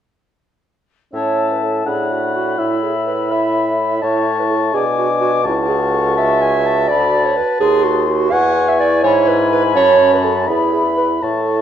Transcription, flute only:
1.15 1.89 A5 medium
1.88 4.03 B5 medium
4.03 4.77 C#6 medium
4.75 5.47 D6 medium
5.45 6.88 C#6 medium
6.89 7.35 B5 medium
7.61 8.28 C6 medium
8.33 9.07 C#6 medium
9.06 10.49 B5 medium
10.50 11.25 B5 medium
11.23 11.62 C#6 medium

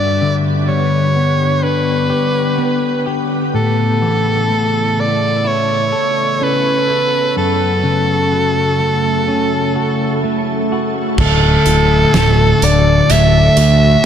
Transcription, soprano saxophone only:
0.00 0.36 D5 medium
0.68 1.65 C#5 medium
1.63 3.07 B4 medium
3.55 5.02 A4 medium
5.00 5.49 D5 medium
5.47 6.45 C#5 medium
6.44 7.37 B4 medium
7.38 10.20 A4 medium
11.20 12.65 A4 medium
12.64 13.13 D5 medium
13.11 14.06 E5 medium

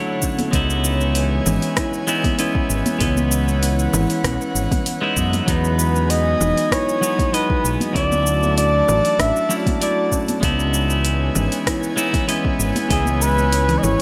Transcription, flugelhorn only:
5.49 6.12 B4 medium
6.10 6.74 D#5 loud
6.72 7.35 C#5 loud
7.34 7.81 B4 medium
7.96 8.54 D5 loud
8.58 9.22 D5 loud
9.20 9.55 E5 loud
9.83 10.26 D5 medium
12.92 13.24 G#4 loud
13.22 13.80 B4 loud
13.78 13.85 D#5 medium
13.83 14.02 C#5 loud

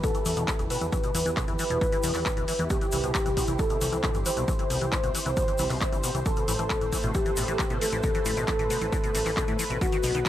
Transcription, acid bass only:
0.04 0.11 B2 medium
0.15 0.20 E3 medium
0.26 0.31 E3 loud
0.37 0.45 B2 loud
0.48 0.53 E3 medium
0.59 0.64 E3 medium
0.70 0.78 B2 loud
0.81 0.87 E3 medium
0.92 0.98 E3 loud
1.04 1.11 B2 loud
1.15 1.20 E3 medium
1.26 1.31 E3 loud
1.37 1.45 B2 medium
1.48 1.53 E3 medium
1.59 1.64 E3 loud
1.70 1.78 B2 medium
1.81 1.87 E3 medium
1.93 1.98 E3 loud
2.04 2.11 B2 loud
2.15 2.20 E3 medium
2.26 2.31 E3 medium
2.37 2.45 B2 medium
2.48 2.53 E3 medium
2.59 2.64 E3 loud
2.70 2.78 B2 loud
2.81 2.87 E3 medium
2.93 2.98 E3 loud
3.04 3.11 B2 loud
3.15 3.20 E3 medium
3.26 3.31 E3 loud
3.37 3.45 B2 loud
3.48 3.53 E3 medium
3.59 3.64 E3 loud
3.70 3.78 B2 medium
3.81 3.87 E3 medium
3.92 3.98 E3 loud
4.04 4.11 B2 loud
4.15 4.20 E3 medium
4.26 4.31 E3 loud
4.37 4.45 B2 medium
4.48 4.53 E3 medium
4.59 4.64 E3 loud
4.70 4.78 B2 loud
4.81 4.87 E3 medium
4.92 4.98 E3 medium
5.03 5.11 B2 loud
5.15 5.20 E3 medium
5.26 5.31 E3 loud
5.37 5.45 B2 loud
5.48 5.53 E3 medium
5.59 5.64 E3 loud
5.70 5.78 B2 loud
5.81 5.87 E3 medium
5.92 5.98 E3 medium
6.04 6.11 B2 loud
6.15 6.20 E3 medium
6.26 6.31 E3 loud
6.37 6.45 B2 loud
6.48 6.53 E3 medium
6.59 6.64 E3 loud
6.70 6.78 B2 loud
6.81 6.87 E3 medium
6.92 6.98 E3 loud
7.04 7.11 B2 loud
7.15 7.20 E3 medium
7.26 7.31 E3 loud
7.37 7.45 B2 loud
7.48 7.53 E3 medium
7.59 7.64 E3 loud
7.70 7.78 B2 medium
7.81 7.87 E3 medium
7.93 7.98 E3 loud
8.04 8.11 B2 loud
8.15 8.20 E3 medium
8.26 8.31 E3 medium
8.37 8.45 B2 loud
8.48 8.53 E3 medium
8.59 8.64 E3 loud
8.70 8.78 B2 loud
8.81 8.87 E3 medium
8.93 8.98 E3 loud
9.04 9.11 B2 loud
9.15 9.20 E3 medium
9.26 9.31 E3 loud
9.37 9.45 B2 loud
9.48 9.53 E3 medium
9.59 9.64 E3 loud
9.70 9.78 B2 loud
9.81 9.87 D#3 medium
9.93 9.98 D#3 loud
10.04 10.11 B2 loud
10.15 10.20 D#3 medium
10.26 10.29 D#3 medium

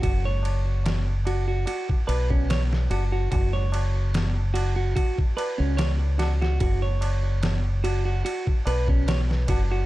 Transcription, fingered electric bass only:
0.03 1.64 F#1 medium
2.08 2.87 B1 medium
2.90 3.27 F#1 medium
3.32 4.93 F#1 medium
5.60 6.58 C#2 medium
6.61 8.22 F#1 medium
8.66 9.45 B1 medium
9.48 9.85 F#1 medium

